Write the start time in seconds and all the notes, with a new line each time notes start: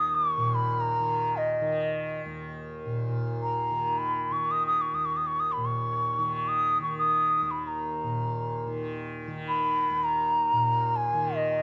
Already playing: D#2 A#2 D#3 D#6
0.15 D6
0.30 C#6
0.37 A#2
0.55 B5
0.81 A#5
1.00 D#3
1.37 D#5
1.61 D#3
2.26 D#2
2.86 A#2
3.08 A#2
3.43 A#5
3.71 D#3
3.98 B5
4.31 D#3 C#6
4.51 D#6
4.67 D#6
4.81 C#6
4.93 D#2 D#6
5.05 C#6
5.17 D#6
5.27 C#6
5.40 D#6
5.52 B5
5.57 A#2
5.66 C#6
6.19 D#3
6.48 D#6
6.80 D#3 C#6
6.99 D#6
7.42 D#2
7.51 B5
7.67 A#5
8.04 A#2
8.67 D#3
9.28 D#3
9.48 B5
9.90 D#2
10.04 A#5
10.53 A#2
10.96 G#5
11.14 D#3
11.36 D#5